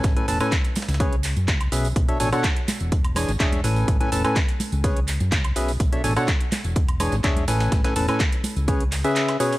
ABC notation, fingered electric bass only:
X:1
M:4/4
L:1/16
Q:1/4=125
K:C#phr
V:1 name="Fingered electric bass" clef=bass
A,,, z E,,, z4 C,,4 F,, C,,2 B,,,2 | B,,, z A,,, z4 E,,,4 G,,, E,,,2 A,,,2 | A,,, z E,,, z4 C,,4 F,, C,,2 B,,,2 | z2 A,,, z4 E,,,4 G,,, z2 A,,,2 |
A,,, z E,,, z4 C,,4 z4 z |]